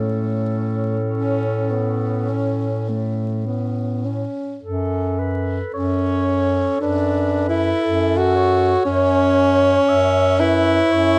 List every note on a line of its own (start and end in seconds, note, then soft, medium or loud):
0.00 4.25 A2 soft
0.00 0.98 A3 soft
0.00 4.29 C#4 soft
0.00 3.47 A4 soft
1.11 1.73 C#4 soft
1.71 2.31 B3 soft
2.30 2.90 C#4 soft
2.89 3.46 A3 soft
3.46 4.07 B3 soft
4.06 4.63 C#4 soft
4.62 5.61 F#2 soft
4.62 5.20 A4 soft
5.19 6.26 A4 soft
5.19 5.73 B4 soft
5.73 6.68 F#2 soft
5.73 6.77 C#4 medium
5.73 6.78 C#5 soft
6.27 7.30 A4 soft
6.80 7.71 F#2 soft
6.80 7.48 D4 medium
6.80 7.85 B4 soft
7.32 8.32 A4 soft
7.49 8.19 E4 medium
7.84 8.74 F#2 soft
7.84 8.37 A4 soft
8.17 8.85 F#4 medium
8.34 8.85 A4 soft
8.34 9.90 C#5 medium
8.85 9.76 F#2 medium
8.85 10.41 C#4 medium
8.85 9.36 C#5 soft
9.37 10.37 C#5 soft
9.88 10.79 F#2 medium
9.88 10.39 E5 medium
10.39 11.19 E4 medium
10.39 10.93 B4 medium
10.39 11.19 C#5 soft
10.91 11.19 F#2 medium
10.91 11.19 C#5 medium